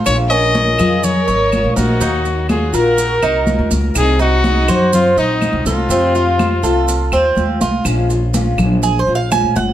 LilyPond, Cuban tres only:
\new Staff \with { instrumentName = "Cuban tres" } { \time 4/4 \key bes \minor \tempo 4 = 123 f'8 des'4 aes'4 des''4 bes'8 | ees'8 r4 bes'4 ees'4 r8 | r8 ees'4 c''4 ees''4 a'8 | c'8 f'4 a'4 c'4 f'8 |
r2 \tuplet 3/2 { aes'8 c''8 f''8 } aes''8 ges''8 | }